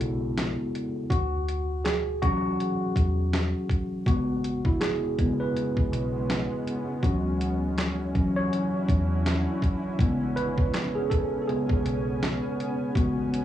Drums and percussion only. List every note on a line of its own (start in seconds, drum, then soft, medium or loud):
0.01 closed hi-hat medium
0.37 snare loud
0.37 clap medium
0.37 closed hi-hat medium
0.75 closed hi-hat medium
1.10 kick loud
1.10 closed hi-hat loud
1.48 closed hi-hat medium
1.85 snare loud
1.85 clap medium
1.85 closed hi-hat medium
2.22 kick loud
2.22 closed hi-hat medium
2.60 closed hi-hat medium
2.96 kick medium
2.96 closed hi-hat medium
3.33 snare loud
3.33 clap medium
3.33 closed hi-hat medium
3.70 kick medium
3.70 closed hi-hat medium
4.06 kick loud
4.06 closed hi-hat medium
4.45 closed hi-hat medium
4.65 kick loud
4.81 snare loud
4.81 clap medium
4.81 closed hi-hat medium
5.19 kick medium
5.19 closed hi-hat medium
5.57 closed hi-hat medium
5.77 kick medium
5.93 closed hi-hat medium
6.30 snare loud
6.30 clap medium
6.30 closed hi-hat medium
6.67 closed hi-hat medium
7.03 kick loud
7.03 closed hi-hat medium
7.41 closed hi-hat medium
7.78 snare loud
7.78 clap medium
7.78 closed hi-hat medium
8.15 kick medium
8.15 closed hi-hat medium
8.53 closed hi-hat medium
8.88 kick medium
8.88 closed hi-hat medium
9.26 snare loud
9.26 clap medium
9.26 closed hi-hat medium
9.62 kick medium
9.62 closed hi-hat medium
9.99 kick loud
9.99 closed hi-hat medium
10.37 closed hi-hat medium
10.58 kick loud
10.74 snare loud
10.74 clap medium
10.74 closed hi-hat medium
11.11 kick medium
11.11 closed hi-hat medium
11.49 closed hi-hat medium
11.69 kick medium
11.86 closed hi-hat medium
12.23 snare loud
12.23 clap medium
12.23 closed hi-hat medium
12.60 closed hi-hat medium
12.95 kick loud
12.95 closed hi-hat medium
13.34 closed hi-hat medium